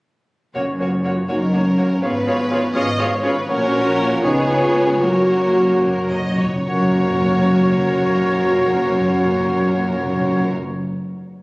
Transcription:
0.54 F#1 F#2 A#3 C#4 F#4 A#4 C#5 F#5
0.80 A#3 C#4 F#4 A#4 C#5 F#5
1.04 A#3 C#4 F4 F#4 A#4 C#5 F#5
1.28 F#1 F#2 A#3 C#4 D#4 F#4 A#4 C#5 F#5
1.53 A#3 C#4 F#4 A#4 C#5 F#5
1.77 A#3 C#4 F#4 A#4 C#5 F#5
2.02 G#1 G#2 B3 C#4 F4 G#4 B4 C#5 F5
2.26 C#4 F4 G#4 C#5 F5
2.51 C#4 F4 G#4 C#5 F5
2.74 G#1 G#2 C#4 F4 G#4 C#5 D#5 F5
2.98 C#4 F4 G#4 C#5 F5
3.23 C#4 F4 G#4 B4 C#5 F5
3.48 A#1 A#2 C#4 F#4 A#4 C#5 F#5
3.73 F#4
3.97 F4
4.22 C#2 C#3 B3 C#4 D#4 G#4 B4 C#5 G#5
4.48 F4
5.01 F#1 F#2 A#3 C#4 F#4 A#4 C#5 F#5
5.26 F#2
5.42 F#2
5.51 F#2
5.59 F#2
5.67 F#2
5.76 F#2
5.83 F#2 A#4
5.92 F#2
6.00 F#2
6.08 F#2 D#5
6.18 F#2
6.27 F#2
6.35 F#2 C#5
6.43 F#2
6.53 F#2
6.67 F#1 F#2 A#3 C#4 F#4 A#4 C#5 F#5
6.75 F#2
6.82 F#2
6.89 F#2
6.96 F#2
7.04 F#2
7.11 F#2
7.18 F#2
7.26 F#2
7.33 F#2
7.40 F#2
7.47 F#2
7.54 F#2
7.62 F#2
7.69 F#2
7.76 F#2
7.84 F#2
7.91 F#2
7.99 F#2
8.06 F#2
8.13 F#2
8.21 F#2
8.28 F#2
8.36 F#2
8.43 F#2
8.50 F#2
8.58 F#2
8.65 F#2
8.73 F#2
8.80 F#2
8.87 F#2
8.94 F#2
9.01 F#2
9.08 F#2
9.15 F#2
9.22 F#2
9.30 F#2
9.37 F#2
9.45 F#2
9.52 F#2
9.59 F#2
9.67 F#2
9.74 F#2
9.82 F#2
9.89 F#2
9.97 F#2
10.03 F#2
10.11 F#2
10.18 F#2
10.26 F#2
10.33 F#2
10.40 F#2
10.47 F#2

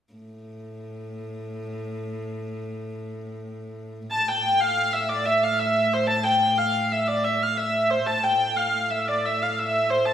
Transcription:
0.14 A2
4.11 A2 A5
4.28 G5
4.60 F5
4.93 E5
5.09 D5
5.25 E5
5.43 F5
5.59 E5
5.93 C5
6.07 A5
6.24 G5
6.57 F5
6.92 E5
7.08 D5
7.24 E5
7.42 F5
7.57 E5
7.90 C5
8.06 A2 A5
8.23 G5
8.56 F5
8.90 E5
9.08 D5
9.25 E5
9.42 F5
9.59 E5
9.90 C5
10.05 A5

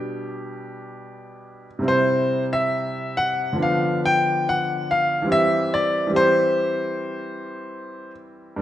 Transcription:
Already playing: B2 G3 D4 G4
1.79 C3 G3 C4
1.85 E4 C5
2.53 E5
3.17 F#5
3.53 D3 F3
3.57 B3 D4
3.62 F5
4.05 G5
4.49 F#5
4.91 F5
5.22 E3 G3
5.27 C4 G4
5.32 E5
5.74 D5
6.07 E3 G3 C4
6.13 G4 C5
8.56 G2 G3

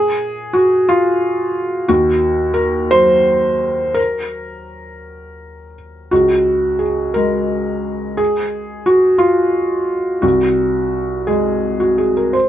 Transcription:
Already playing: A#3 G#4
0.53 F#4
0.89 F4
1.88 D#2 F#4
2.54 A#4
2.91 F#3 C5
3.94 A#4
6.11 C#2 F#4
6.79 G#4
7.14 G#3 A#4
8.17 G#4
8.86 F#4
9.18 F4
10.22 C2 F#4
11.27 G#3 G#4
11.80 F#4
11.98 G#4
12.17 A#4
12.33 C5

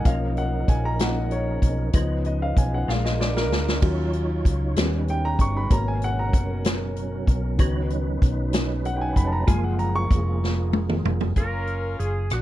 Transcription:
Already playing: A#3 D#5
0.04 B1 F3 A#3 C#4 D#4 A#4 F5, kick, closed hi-hat
0.37 F#5, closed hi-hat
0.68 A#1 G#5, kick, closed hi-hat
0.85 A#5
0.99 F3 A#3 C#4 D#4 F#5, snare, closed hi-hat
1.31 C#5, closed hi-hat
1.62 B1, kick, closed hi-hat
1.93 C#2 F3 B3 C#4 D#4 B4, kick, closed hi-hat
2.25 D#5, closed hi-hat
2.42 F5
2.57 B1 G#5, kick, closed hi-hat
2.74 F#5
2.87 A#1 G#3 A#3 D4 F4 A#4 F5, snare
3.05 D#5, snare
3.21 D5, snare
3.37 A#4, snare
3.50 D2, snare
3.68 snare
3.81 D#2 F#3 C#4 D#4 F4 C#5, kick, crash
4.13 closed hi-hat
4.45 C#2, kick, closed hi-hat
4.75 D#2 B2 F#3 G3 B3 C#4 D#4 B4, snare, closed hi-hat
4.83 G3
5.08 G5, closed hi-hat
5.25 A#5
5.39 G1 C#6, kick, closed hi-hat
5.57 B5
5.70 G#1 B2 D#3 F#3 A#3 B3 C#4 A#4 A#5, kick, closed hi-hat
5.88 G#5
6.02 F#5, closed hi-hat
6.19 A#5
6.33 F#1, kick, closed hi-hat
6.65 snare, closed hi-hat
6.96 closed hi-hat
7.27 B1, kick, closed hi-hat
7.58 C#2 D#3 F#3 B3 C#4 D#4 B4, kick, closed hi-hat
7.90 closed hi-hat
8.22 B1, kick, closed hi-hat
8.53 snare, closed hi-hat
8.85 F#5, closed hi-hat
8.96 G5
9.01 G#5
9.16 F1 B5, kick, closed hi-hat
9.27 A5
9.32 A#5
9.47 F#1 F3 G#3 A#3 F4 G#4 G#5, kick, closed hi-hat
9.64 F#5
9.79 A#5, closed hi-hat
9.96 C#6
10.11 F1, kick, closed hi-hat
10.44 snare
10.73 high tom
10.89 mid tom
11.05 F1, mid tom
11.21 floor tom
11.36 F#1 C#4 F4 A#4, kick, closed hi-hat
11.67 closed hi-hat
12.00 F#1 G#4, closed hi-hat
12.30 A#1 D4 F#4, cross-stick, closed hi-hat

